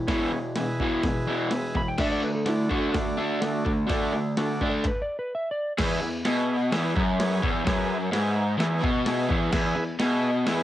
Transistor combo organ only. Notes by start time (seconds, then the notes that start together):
0.07 G#4 B4 C#5
0.56 G#4 B4 E5
1.03 G#4 B4 E5
1.50 G#4 B4 E5
1.98 F#4 A4 D5
2.45 F#4 A4 D5
2.92 F#4 A4 D5
3.41 F#4 A4 D5
3.87 F#4 A4 D5
4.38 F#4 A4 D5
5.77 G#4 B4 E5
6.25 G#4 B4 E5
6.72 G#4 B4 E5
7.20 G#4 B4 C#5
7.68 G#4 B4 E5
8.12 G#4 B4 E5
8.59 G#4 B4 E5
9.07 G#4 B4 E5
9.54 G#4 B4 E5
10.01 G#4 B4 E5
10.47 G#4 B4 E5